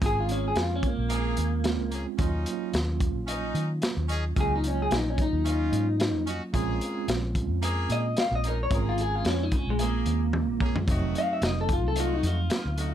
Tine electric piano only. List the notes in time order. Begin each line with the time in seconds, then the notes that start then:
0.02 G#3 C4 C#4 F4
1.64 G#3 C4 C#4 F4
2.19 F#3 A#3 C#4 F4
4.37 F#3 A#3 C#4 F4
5.72 F#3 A#3 C#4 F4
6.53 G#3 C4 C#4 F4
8.70 G#3 C4 C#4 F4
10.87 F#3 A3 C4 D#4